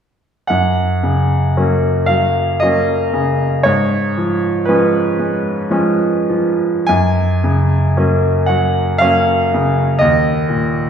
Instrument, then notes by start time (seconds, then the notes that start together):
grand piano
0.47 F#2 F#5
1.03 C#3
1.57 F#3 A#3 C#4
2.06 F#3 F5
2.60 F#3 A#3 C#4 D#5
3.13 C#3
3.63 G#2 C#5
4.17 F3
4.65 F3 G#3 C#4 B4
5.19 G#3
5.70 F3 G#3 C#4
6.29 F3
6.87 F#2 G#5
7.44 C#3
7.97 F#3 A#3 C#4
8.46 F#3 F#5
8.98 F#3 A#3 C#4 F5
9.54 C#3
9.99 D#2 D#5
10.49 A#2